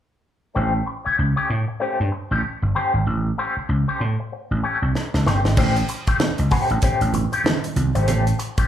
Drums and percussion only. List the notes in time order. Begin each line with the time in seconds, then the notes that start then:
4.95 snare
5.14 snare
5.27 snare
5.45 snare
5.57 kick, crash, muted conga
5.76 closed hi-hat
5.89 closed hi-hat
6.07 kick, closed hi-hat
6.20 snare, high conga
6.38 closed hi-hat
6.51 kick, open hi-hat
6.70 closed hi-hat
6.82 kick, closed hi-hat, muted conga
7.01 closed hi-hat
7.14 closed hi-hat, muted conga, low conga
7.33 closed hi-hat
7.44 snare, high conga
7.64 closed hi-hat
7.76 closed hi-hat, high conga
7.95 closed hi-hat
8.08 closed hi-hat, muted conga
8.27 closed hi-hat
8.39 closed hi-hat
8.58 kick, closed hi-hat